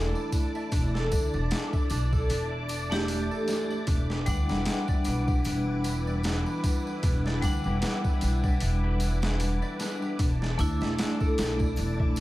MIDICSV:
0, 0, Header, 1, 6, 480
1, 0, Start_track
1, 0, Key_signature, 1, "minor"
1, 0, Tempo, 789474
1, 438, Time_signature, 4, 2, 24, 8
1, 7418, End_track
2, 0, Start_track
2, 0, Title_t, "String machine"
2, 0, Program_c, 0, 50
2, 0, Note_on_c, 0, 64, 80
2, 0, Note_on_c, 0, 74, 73
2, 0, Note_on_c, 0, 81, 78
2, 0, Note_on_c, 0, 86, 90
2, 2336, Note_off_c, 0, 64, 0
2, 2337, Note_off_c, 0, 74, 0
2, 2337, Note_off_c, 0, 81, 0
2, 2360, Note_on_c, 0, 64, 84
2, 2362, Note_on_c, 0, 71, 71
2, 6175, Note_off_c, 0, 64, 0
2, 6175, Note_off_c, 0, 86, 0
2, 6176, Note_off_c, 0, 71, 0
2, 6203, Note_on_c, 0, 74, 79
2, 6204, Note_on_c, 0, 64, 78
2, 6204, Note_on_c, 0, 81, 80
2, 6207, Note_on_c, 0, 86, 94
2, 7418, Note_off_c, 0, 64, 0
2, 7418, Note_off_c, 0, 74, 0
2, 7418, Note_off_c, 0, 81, 0
2, 7418, Note_off_c, 0, 86, 0
2, 7418, End_track
3, 0, Start_track
3, 0, Title_t, "Harp"
3, 0, Program_c, 1, 46
3, 0, Note_on_c, 1, 62, 84
3, 0, Note_on_c, 1, 69, 103
3, 0, Note_on_c, 1, 74, 76
3, 0, Note_on_c, 1, 76, 102
3, 94, Note_off_c, 1, 74, 0
3, 97, Note_on_c, 1, 74, 77
3, 198, Note_off_c, 1, 62, 0
3, 201, Note_on_c, 1, 62, 76
3, 333, Note_off_c, 1, 76, 0
3, 335, Note_on_c, 1, 76, 94
3, 435, Note_off_c, 1, 62, 0
3, 437, Note_on_c, 1, 62, 97
3, 570, Note_off_c, 1, 69, 0
3, 572, Note_on_c, 1, 69, 105
3, 674, Note_off_c, 1, 62, 0
3, 676, Note_on_c, 1, 62, 78
3, 811, Note_off_c, 1, 74, 0
3, 813, Note_on_c, 1, 74, 73
3, 916, Note_off_c, 1, 62, 0
3, 919, Note_on_c, 1, 62, 83
3, 1053, Note_off_c, 1, 76, 0
3, 1056, Note_on_c, 1, 76, 101
3, 1159, Note_off_c, 1, 62, 0
3, 1162, Note_on_c, 1, 62, 93
3, 1293, Note_off_c, 1, 69, 0
3, 1295, Note_on_c, 1, 69, 99
3, 1396, Note_off_c, 1, 62, 0
3, 1398, Note_on_c, 1, 62, 76
3, 1531, Note_off_c, 1, 74, 0
3, 1533, Note_on_c, 1, 74, 72
3, 1638, Note_off_c, 1, 62, 0
3, 1641, Note_on_c, 1, 62, 73
3, 1769, Note_off_c, 1, 76, 0
3, 1772, Note_on_c, 1, 76, 90
3, 1875, Note_off_c, 1, 62, 0
3, 1878, Note_on_c, 1, 62, 96
3, 2010, Note_off_c, 1, 69, 0
3, 2013, Note_on_c, 1, 69, 100
3, 2116, Note_off_c, 1, 62, 0
3, 2118, Note_on_c, 1, 62, 75
3, 2251, Note_off_c, 1, 74, 0
3, 2254, Note_on_c, 1, 74, 71
3, 2356, Note_off_c, 1, 62, 0
3, 2358, Note_on_c, 1, 62, 90
3, 2493, Note_on_c, 1, 67, 107
3, 2595, Note_off_c, 1, 62, 0
3, 2597, Note_on_c, 1, 62, 80
3, 2733, Note_on_c, 1, 71, 68
3, 2819, Note_off_c, 1, 76, 0
3, 2836, Note_off_c, 1, 62, 0
3, 2838, Note_on_c, 1, 62, 83
3, 2970, Note_off_c, 1, 74, 0
3, 2972, Note_on_c, 1, 74, 101
3, 3075, Note_off_c, 1, 62, 0
3, 3077, Note_on_c, 1, 62, 91
3, 3208, Note_off_c, 1, 67, 0
3, 3210, Note_on_c, 1, 67, 95
3, 3315, Note_off_c, 1, 62, 0
3, 3318, Note_on_c, 1, 62, 77
3, 3348, Note_off_c, 1, 69, 0
3, 3447, Note_off_c, 1, 71, 0
3, 3450, Note_on_c, 1, 71, 74
3, 3552, Note_off_c, 1, 62, 0
3, 3555, Note_on_c, 1, 62, 71
3, 3690, Note_off_c, 1, 74, 0
3, 3693, Note_on_c, 1, 74, 98
3, 3797, Note_off_c, 1, 62, 0
3, 3800, Note_on_c, 1, 62, 101
3, 3930, Note_off_c, 1, 67, 0
3, 3932, Note_on_c, 1, 67, 96
3, 4036, Note_off_c, 1, 62, 0
3, 4038, Note_on_c, 1, 62, 77
3, 4169, Note_off_c, 1, 71, 0
3, 4172, Note_on_c, 1, 71, 73
3, 4275, Note_off_c, 1, 62, 0
3, 4278, Note_on_c, 1, 62, 83
3, 4413, Note_off_c, 1, 74, 0
3, 4415, Note_on_c, 1, 74, 105
3, 4517, Note_off_c, 1, 62, 0
3, 4519, Note_on_c, 1, 62, 106
3, 4655, Note_off_c, 1, 67, 0
3, 4657, Note_on_c, 1, 67, 99
3, 4759, Note_off_c, 1, 62, 0
3, 4762, Note_on_c, 1, 62, 85
3, 4894, Note_off_c, 1, 71, 0
3, 4897, Note_on_c, 1, 71, 78
3, 5000, Note_off_c, 1, 62, 0
3, 5003, Note_on_c, 1, 62, 76
3, 5132, Note_off_c, 1, 74, 0
3, 5134, Note_on_c, 1, 74, 98
3, 5238, Note_off_c, 1, 62, 0
3, 5240, Note_on_c, 1, 62, 98
3, 5370, Note_off_c, 1, 67, 0
3, 5372, Note_on_c, 1, 67, 107
3, 5477, Note_off_c, 1, 62, 0
3, 5479, Note_on_c, 1, 62, 75
3, 5611, Note_off_c, 1, 71, 0
3, 5613, Note_on_c, 1, 71, 74
3, 5716, Note_off_c, 1, 62, 0
3, 5719, Note_on_c, 1, 62, 79
3, 5848, Note_off_c, 1, 74, 0
3, 5850, Note_on_c, 1, 74, 96
3, 5953, Note_off_c, 1, 62, 0
3, 5955, Note_on_c, 1, 62, 106
3, 6089, Note_off_c, 1, 67, 0
3, 6091, Note_on_c, 1, 67, 98
3, 6194, Note_off_c, 1, 62, 0
3, 6196, Note_on_c, 1, 62, 76
3, 6332, Note_off_c, 1, 74, 0
3, 6334, Note_on_c, 1, 74, 82
3, 6439, Note_off_c, 1, 62, 0
3, 6441, Note_on_c, 1, 62, 79
3, 6576, Note_on_c, 1, 76, 99
3, 6677, Note_off_c, 1, 62, 0
3, 6680, Note_on_c, 1, 62, 104
3, 6814, Note_on_c, 1, 69, 105
3, 6859, Note_off_c, 1, 71, 0
3, 6919, Note_off_c, 1, 62, 0
3, 6922, Note_on_c, 1, 62, 71
3, 7051, Note_off_c, 1, 74, 0
3, 7054, Note_on_c, 1, 74, 73
3, 7159, Note_off_c, 1, 62, 0
3, 7161, Note_on_c, 1, 62, 76
3, 7291, Note_off_c, 1, 76, 0
3, 7293, Note_on_c, 1, 76, 100
3, 7397, Note_off_c, 1, 62, 0
3, 7399, Note_on_c, 1, 62, 93
3, 7418, Note_off_c, 1, 62, 0
3, 7418, Note_off_c, 1, 67, 0
3, 7418, Note_off_c, 1, 69, 0
3, 7418, Note_off_c, 1, 74, 0
3, 7418, Note_off_c, 1, 76, 0
3, 7418, End_track
4, 0, Start_track
4, 0, Title_t, "Vibraphone"
4, 0, Program_c, 2, 11
4, 0, Note_on_c, 2, 57, 88
4, 0, Note_on_c, 2, 62, 80
4, 0, Note_on_c, 2, 64, 100
4, 649, Note_off_c, 2, 57, 0
4, 653, Note_off_c, 2, 62, 0
4, 658, Note_off_c, 2, 64, 0
4, 1761, Note_on_c, 2, 57, 88
4, 1771, Note_on_c, 2, 62, 87
4, 1780, Note_on_c, 2, 67, 106
4, 2339, Note_off_c, 2, 57, 0
4, 2344, Note_off_c, 2, 62, 0
4, 2349, Note_off_c, 2, 67, 0
4, 2589, Note_on_c, 2, 55, 84
4, 2599, Note_on_c, 2, 62, 76
4, 2606, Note_on_c, 2, 78, 94
4, 4488, Note_off_c, 2, 55, 0
4, 4493, Note_off_c, 2, 62, 0
4, 4497, Note_off_c, 2, 78, 0
4, 4510, Note_on_c, 2, 55, 82
4, 4519, Note_on_c, 2, 62, 69
4, 4528, Note_on_c, 2, 78, 89
4, 6181, Note_off_c, 2, 55, 0
4, 6186, Note_off_c, 2, 62, 0
4, 6190, Note_off_c, 2, 78, 0
4, 6431, Note_on_c, 2, 57, 84
4, 6440, Note_on_c, 2, 62, 80
4, 6448, Note_on_c, 2, 64, 92
4, 7418, Note_off_c, 2, 57, 0
4, 7418, Note_off_c, 2, 62, 0
4, 7418, Note_off_c, 2, 64, 0
4, 7418, End_track
5, 0, Start_track
5, 0, Title_t, "Upright bass"
5, 0, Program_c, 3, 32
5, 0, Note_on_c, 3, 28, 89
5, 67, Note_off_c, 3, 28, 0
5, 439, Note_on_c, 3, 28, 99
5, 653, Note_off_c, 3, 28, 0
5, 680, Note_on_c, 3, 38, 92
5, 798, Note_off_c, 3, 38, 0
5, 814, Note_on_c, 3, 28, 91
5, 906, Note_off_c, 3, 28, 0
5, 1159, Note_on_c, 3, 35, 86
5, 1373, Note_off_c, 3, 35, 0
5, 1402, Note_on_c, 3, 28, 82
5, 1989, Note_off_c, 3, 28, 0
5, 2357, Note_on_c, 3, 28, 93
5, 2572, Note_off_c, 3, 28, 0
5, 2595, Note_on_c, 3, 38, 96
5, 2715, Note_off_c, 3, 38, 0
5, 2738, Note_on_c, 3, 28, 85
5, 2828, Note_off_c, 3, 28, 0
5, 3081, Note_on_c, 3, 35, 87
5, 3294, Note_off_c, 3, 35, 0
5, 3322, Note_on_c, 3, 28, 89
5, 3909, Note_off_c, 3, 28, 0
5, 4276, Note_on_c, 3, 28, 106
5, 4492, Note_off_c, 3, 28, 0
5, 4517, Note_on_c, 3, 38, 96
5, 4636, Note_off_c, 3, 38, 0
5, 4656, Note_on_c, 3, 28, 85
5, 4746, Note_off_c, 3, 28, 0
5, 4999, Note_on_c, 3, 35, 80
5, 5213, Note_off_c, 3, 35, 0
5, 5242, Note_on_c, 3, 28, 88
5, 5829, Note_off_c, 3, 28, 0
5, 6199, Note_on_c, 3, 28, 101
5, 6413, Note_off_c, 3, 28, 0
5, 6440, Note_on_c, 3, 38, 102
5, 6557, Note_off_c, 3, 38, 0
5, 6574, Note_on_c, 3, 28, 89
5, 6666, Note_off_c, 3, 28, 0
5, 6921, Note_on_c, 3, 35, 87
5, 7134, Note_off_c, 3, 35, 0
5, 7165, Note_on_c, 3, 28, 88
5, 7418, Note_off_c, 3, 28, 0
5, 7418, End_track
6, 0, Start_track
6, 0, Title_t, "Drums"
6, 93, Note_on_c, 9, 54, 38
6, 154, Note_off_c, 9, 54, 0
6, 196, Note_on_c, 9, 54, 106
6, 197, Note_on_c, 9, 36, 84
6, 197, Note_on_c, 9, 46, 61
6, 257, Note_off_c, 9, 54, 0
6, 258, Note_off_c, 9, 36, 0
6, 258, Note_off_c, 9, 46, 0
6, 334, Note_on_c, 9, 54, 42
6, 395, Note_off_c, 9, 54, 0
6, 435, Note_on_c, 9, 54, 48
6, 437, Note_on_c, 9, 36, 103
6, 438, Note_on_c, 9, 46, 81
6, 496, Note_off_c, 9, 54, 0
6, 498, Note_off_c, 9, 36, 0
6, 499, Note_off_c, 9, 46, 0
6, 578, Note_on_c, 9, 38, 40
6, 639, Note_off_c, 9, 38, 0
6, 678, Note_on_c, 9, 36, 91
6, 678, Note_on_c, 9, 54, 96
6, 680, Note_on_c, 9, 46, 67
6, 739, Note_off_c, 9, 36, 0
6, 739, Note_off_c, 9, 54, 0
6, 741, Note_off_c, 9, 46, 0
6, 812, Note_on_c, 9, 54, 41
6, 873, Note_off_c, 9, 54, 0
6, 915, Note_on_c, 9, 54, 54
6, 918, Note_on_c, 9, 46, 84
6, 923, Note_on_c, 9, 38, 123
6, 976, Note_off_c, 9, 54, 0
6, 979, Note_off_c, 9, 46, 0
6, 983, Note_off_c, 9, 38, 0
6, 1052, Note_on_c, 9, 54, 34
6, 1053, Note_on_c, 9, 36, 98
6, 1113, Note_off_c, 9, 54, 0
6, 1114, Note_off_c, 9, 36, 0
6, 1153, Note_on_c, 9, 54, 94
6, 1158, Note_on_c, 9, 46, 70
6, 1214, Note_off_c, 9, 54, 0
6, 1219, Note_off_c, 9, 46, 0
6, 1292, Note_on_c, 9, 36, 88
6, 1292, Note_on_c, 9, 54, 40
6, 1353, Note_off_c, 9, 36, 0
6, 1353, Note_off_c, 9, 54, 0
6, 1394, Note_on_c, 9, 54, 48
6, 1398, Note_on_c, 9, 46, 86
6, 1455, Note_off_c, 9, 54, 0
6, 1459, Note_off_c, 9, 46, 0
6, 1633, Note_on_c, 9, 81, 55
6, 1636, Note_on_c, 9, 54, 93
6, 1637, Note_on_c, 9, 46, 71
6, 1694, Note_off_c, 9, 81, 0
6, 1697, Note_off_c, 9, 54, 0
6, 1698, Note_off_c, 9, 46, 0
6, 1774, Note_on_c, 9, 54, 39
6, 1776, Note_on_c, 9, 38, 116
6, 1835, Note_off_c, 9, 54, 0
6, 1836, Note_off_c, 9, 38, 0
6, 1874, Note_on_c, 9, 46, 90
6, 1878, Note_on_c, 9, 54, 57
6, 1935, Note_off_c, 9, 46, 0
6, 1938, Note_off_c, 9, 54, 0
6, 2014, Note_on_c, 9, 54, 35
6, 2075, Note_off_c, 9, 54, 0
6, 2114, Note_on_c, 9, 46, 63
6, 2114, Note_on_c, 9, 54, 79
6, 2119, Note_on_c, 9, 38, 41
6, 2175, Note_off_c, 9, 46, 0
6, 2175, Note_off_c, 9, 54, 0
6, 2179, Note_off_c, 9, 38, 0
6, 2253, Note_on_c, 9, 54, 37
6, 2313, Note_off_c, 9, 54, 0
6, 2353, Note_on_c, 9, 46, 83
6, 2354, Note_on_c, 9, 54, 52
6, 2355, Note_on_c, 9, 36, 107
6, 2414, Note_off_c, 9, 46, 0
6, 2415, Note_off_c, 9, 54, 0
6, 2416, Note_off_c, 9, 36, 0
6, 2493, Note_on_c, 9, 38, 37
6, 2553, Note_off_c, 9, 38, 0
6, 2591, Note_on_c, 9, 54, 86
6, 2592, Note_on_c, 9, 46, 67
6, 2595, Note_on_c, 9, 36, 94
6, 2652, Note_off_c, 9, 46, 0
6, 2652, Note_off_c, 9, 54, 0
6, 2655, Note_off_c, 9, 36, 0
6, 2730, Note_on_c, 9, 54, 41
6, 2733, Note_on_c, 9, 38, 49
6, 2790, Note_off_c, 9, 54, 0
6, 2794, Note_off_c, 9, 38, 0
6, 2830, Note_on_c, 9, 46, 89
6, 2831, Note_on_c, 9, 54, 55
6, 2835, Note_on_c, 9, 38, 122
6, 2891, Note_off_c, 9, 46, 0
6, 2892, Note_off_c, 9, 54, 0
6, 2896, Note_off_c, 9, 38, 0
6, 2966, Note_on_c, 9, 54, 38
6, 2969, Note_on_c, 9, 36, 100
6, 3026, Note_off_c, 9, 54, 0
6, 3030, Note_off_c, 9, 36, 0
6, 3067, Note_on_c, 9, 54, 89
6, 3071, Note_on_c, 9, 46, 71
6, 3128, Note_off_c, 9, 54, 0
6, 3131, Note_off_c, 9, 46, 0
6, 3208, Note_on_c, 9, 54, 37
6, 3210, Note_on_c, 9, 36, 93
6, 3269, Note_off_c, 9, 54, 0
6, 3270, Note_off_c, 9, 36, 0
6, 3310, Note_on_c, 9, 54, 50
6, 3311, Note_on_c, 9, 81, 70
6, 3314, Note_on_c, 9, 46, 83
6, 3371, Note_off_c, 9, 54, 0
6, 3371, Note_off_c, 9, 81, 0
6, 3375, Note_off_c, 9, 46, 0
6, 3552, Note_on_c, 9, 54, 98
6, 3554, Note_on_c, 9, 46, 72
6, 3612, Note_off_c, 9, 54, 0
6, 3615, Note_off_c, 9, 46, 0
6, 3691, Note_on_c, 9, 54, 39
6, 3752, Note_off_c, 9, 54, 0
6, 3789, Note_on_c, 9, 54, 53
6, 3795, Note_on_c, 9, 46, 82
6, 3800, Note_on_c, 9, 38, 109
6, 3850, Note_off_c, 9, 54, 0
6, 3856, Note_off_c, 9, 46, 0
6, 3861, Note_off_c, 9, 38, 0
6, 3928, Note_on_c, 9, 54, 34
6, 3989, Note_off_c, 9, 54, 0
6, 4035, Note_on_c, 9, 36, 95
6, 4035, Note_on_c, 9, 46, 64
6, 4036, Note_on_c, 9, 54, 81
6, 4096, Note_off_c, 9, 36, 0
6, 4096, Note_off_c, 9, 46, 0
6, 4097, Note_off_c, 9, 54, 0
6, 4176, Note_on_c, 9, 54, 40
6, 4237, Note_off_c, 9, 54, 0
6, 4273, Note_on_c, 9, 54, 55
6, 4274, Note_on_c, 9, 46, 84
6, 4275, Note_on_c, 9, 36, 110
6, 4334, Note_off_c, 9, 54, 0
6, 4335, Note_off_c, 9, 46, 0
6, 4336, Note_off_c, 9, 36, 0
6, 4413, Note_on_c, 9, 38, 42
6, 4474, Note_off_c, 9, 38, 0
6, 4514, Note_on_c, 9, 46, 72
6, 4515, Note_on_c, 9, 36, 94
6, 4519, Note_on_c, 9, 54, 89
6, 4575, Note_off_c, 9, 36, 0
6, 4575, Note_off_c, 9, 46, 0
6, 4580, Note_off_c, 9, 54, 0
6, 4645, Note_on_c, 9, 54, 36
6, 4706, Note_off_c, 9, 54, 0
6, 4753, Note_on_c, 9, 46, 91
6, 4754, Note_on_c, 9, 54, 53
6, 4758, Note_on_c, 9, 38, 120
6, 4814, Note_off_c, 9, 46, 0
6, 4814, Note_off_c, 9, 54, 0
6, 4819, Note_off_c, 9, 38, 0
6, 4890, Note_on_c, 9, 36, 98
6, 4890, Note_on_c, 9, 54, 37
6, 4951, Note_off_c, 9, 36, 0
6, 4951, Note_off_c, 9, 54, 0
6, 4992, Note_on_c, 9, 54, 84
6, 4993, Note_on_c, 9, 46, 74
6, 5053, Note_off_c, 9, 54, 0
6, 5054, Note_off_c, 9, 46, 0
6, 5128, Note_on_c, 9, 54, 38
6, 5129, Note_on_c, 9, 36, 91
6, 5189, Note_off_c, 9, 54, 0
6, 5190, Note_off_c, 9, 36, 0
6, 5231, Note_on_c, 9, 46, 90
6, 5238, Note_on_c, 9, 54, 50
6, 5292, Note_off_c, 9, 46, 0
6, 5299, Note_off_c, 9, 54, 0
6, 5471, Note_on_c, 9, 46, 73
6, 5474, Note_on_c, 9, 54, 85
6, 5474, Note_on_c, 9, 81, 60
6, 5532, Note_off_c, 9, 46, 0
6, 5535, Note_off_c, 9, 54, 0
6, 5535, Note_off_c, 9, 81, 0
6, 5606, Note_on_c, 9, 54, 37
6, 5612, Note_on_c, 9, 38, 113
6, 5667, Note_off_c, 9, 54, 0
6, 5672, Note_off_c, 9, 38, 0
6, 5714, Note_on_c, 9, 46, 89
6, 5715, Note_on_c, 9, 54, 44
6, 5775, Note_off_c, 9, 46, 0
6, 5776, Note_off_c, 9, 54, 0
6, 5850, Note_on_c, 9, 54, 35
6, 5911, Note_off_c, 9, 54, 0
6, 5955, Note_on_c, 9, 54, 77
6, 5957, Note_on_c, 9, 46, 63
6, 5962, Note_on_c, 9, 38, 41
6, 6016, Note_off_c, 9, 54, 0
6, 6018, Note_off_c, 9, 46, 0
6, 6023, Note_off_c, 9, 38, 0
6, 6093, Note_on_c, 9, 54, 35
6, 6154, Note_off_c, 9, 54, 0
6, 6196, Note_on_c, 9, 46, 85
6, 6197, Note_on_c, 9, 36, 109
6, 6201, Note_on_c, 9, 54, 48
6, 6257, Note_off_c, 9, 36, 0
6, 6257, Note_off_c, 9, 46, 0
6, 6262, Note_off_c, 9, 54, 0
6, 6336, Note_on_c, 9, 38, 41
6, 6396, Note_off_c, 9, 38, 0
6, 6437, Note_on_c, 9, 54, 76
6, 6438, Note_on_c, 9, 36, 90
6, 6438, Note_on_c, 9, 46, 67
6, 6497, Note_off_c, 9, 54, 0
6, 6498, Note_off_c, 9, 36, 0
6, 6498, Note_off_c, 9, 46, 0
6, 6571, Note_on_c, 9, 54, 36
6, 6577, Note_on_c, 9, 38, 52
6, 6631, Note_off_c, 9, 54, 0
6, 6638, Note_off_c, 9, 38, 0
6, 6679, Note_on_c, 9, 46, 93
6, 6681, Note_on_c, 9, 54, 48
6, 6684, Note_on_c, 9, 38, 125
6, 6740, Note_off_c, 9, 46, 0
6, 6742, Note_off_c, 9, 54, 0
6, 6745, Note_off_c, 9, 38, 0
6, 6811, Note_on_c, 9, 54, 33
6, 6813, Note_on_c, 9, 36, 96
6, 6872, Note_off_c, 9, 54, 0
6, 6874, Note_off_c, 9, 36, 0
6, 6918, Note_on_c, 9, 54, 80
6, 6919, Note_on_c, 9, 46, 83
6, 6924, Note_on_c, 9, 38, 113
6, 6979, Note_off_c, 9, 54, 0
6, 6980, Note_off_c, 9, 46, 0
6, 6984, Note_off_c, 9, 38, 0
6, 7049, Note_on_c, 9, 54, 38
6, 7053, Note_on_c, 9, 36, 83
6, 7109, Note_off_c, 9, 54, 0
6, 7114, Note_off_c, 9, 36, 0
6, 7151, Note_on_c, 9, 81, 72
6, 7155, Note_on_c, 9, 54, 46
6, 7158, Note_on_c, 9, 46, 60
6, 7212, Note_off_c, 9, 81, 0
6, 7216, Note_off_c, 9, 54, 0
6, 7218, Note_off_c, 9, 46, 0
6, 7293, Note_on_c, 9, 36, 92
6, 7354, Note_off_c, 9, 36, 0
6, 7394, Note_on_c, 9, 54, 97
6, 7418, Note_off_c, 9, 54, 0
6, 7418, End_track
0, 0, End_of_file